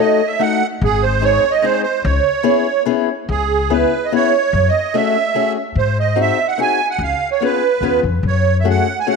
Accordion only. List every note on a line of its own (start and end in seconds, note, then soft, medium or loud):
0.00 0.28 D#5 medium
0.27 0.42 E5 medium
0.41 0.67 F#5 medium
0.84 1.05 G#4 medium
1.03 1.24 C5 medium
1.24 1.52 C#5 loud
1.51 1.65 D#5 medium
1.65 1.82 C5 medium
1.83 2.03 C5 medium
2.05 2.84 C#5 medium
3.30 3.72 G#4 medium
3.72 4.07 B4 medium
4.05 4.12 D#5 soft
4.15 4.70 C#5 medium
4.69 4.96 D#5 medium
4.95 5.53 E5 medium
5.78 5.98 C5 medium
6.00 6.19 D#5 medium
6.21 6.47 E5 medium
6.47 6.60 F#5 medium
6.61 6.88 G#5 medium
6.90 7.02 F#5 medium
7.03 7.30 F5 medium
7.31 7.43 C#5 medium
7.45 8.01 B4 medium
8.27 8.57 C#5 medium
8.60 8.68 E5 soft
8.70 8.99 F#5 medium
9.00 9.08 G#5 medium
9.09 9.16 F#5 medium